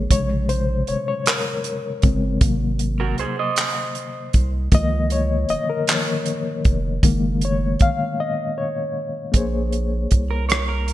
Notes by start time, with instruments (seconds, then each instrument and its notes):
Already playing: reed electric piano D#3 G#3 A#3 G#4 A#4 C5 C#5
0.11 analog synth bass A#1, reed electric piano C3 C#3 G#3 C#5, kick, closed hi-hat
0.49 reed electric piano C5, closed hi-hat
0.87 analog synth bass G1, reed electric piano C#5, closed hi-hat
1.08 reed electric piano C#5
1.26 reed electric piano A#4, clap, closed hi-hat
1.64 closed hi-hat
2.02 analog synth bass G1, reed electric piano C#3 G#3 C4, kick, closed hi-hat
2.41 analog synth bass G#1, reed electric piano C3 F#3 A#3, kick, closed hi-hat
2.79 closed hi-hat
3.00 clean electric guitar F#4 A#4
3.18 analog synth bass C2, clean electric guitar G#4 C5, closed hi-hat
3.39 clean electric guitar C5 D#5
3.56 clap, closed hi-hat
3.95 closed hi-hat
4.33 analog synth bass C2, kick, closed hi-hat
4.72 analog synth bass C#2, reed electric piano D#3 F3 A#3 D#5, kick, closed hi-hat
5.10 reed electric piano C#5, closed hi-hat
5.49 analog synth bass F1, reed electric piano D#5, closed hi-hat
5.70 reed electric piano A#4
5.87 reed electric piano D#3 F3 A#3 C#5, clap, closed hi-hat
6.26 closed hi-hat
6.65 analog synth bass F1, kick, closed hi-hat
7.03 analog synth bass F#1, reed electric piano D#3 G#3 A#3, kick, closed hi-hat
7.41 reed electric piano C#5, closed hi-hat
7.79 analog synth bass A1, reed electric piano F5, kick, closed hi-hat
8.20 reed electric piano D#5
8.58 reed electric piano C#5
9.32 analog synth bass A#1, reed electric piano A#3 G#4 C5, kick, closed hi-hat
9.37 reed electric piano C#5
9.72 closed hi-hat
10.11 analog synth bass C2, kick, closed hi-hat
10.31 clean electric guitar A#4
10.49 clean electric guitar A#4 C#5, cross-stick, closed hi-hat
10.68 clean electric guitar A#4
10.88 closed hi-hat